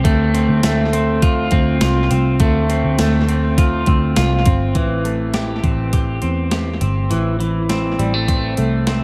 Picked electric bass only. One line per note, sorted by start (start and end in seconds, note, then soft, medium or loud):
0.05 0.47 D2 loud
0.49 0.63 D2 loud
0.63 1.48 D2 medium
1.52 1.80 D2 loud
1.81 2.09 C2 medium
2.11 2.39 C2 medium
2.40 2.82 D2 loud
2.85 2.98 D2 medium
2.99 3.83 D2 medium
3.87 4.15 D2 medium
4.17 4.45 C2 medium
4.46 4.74 G1 medium
4.75 5.60 A1 medium
5.64 6.20 A1 medium
6.23 6.79 E2 medium
6.81 7.09 G1 medium
7.11 7.95 A1 medium
7.99 8.55 A1 medium
8.58 9.04 C2 medium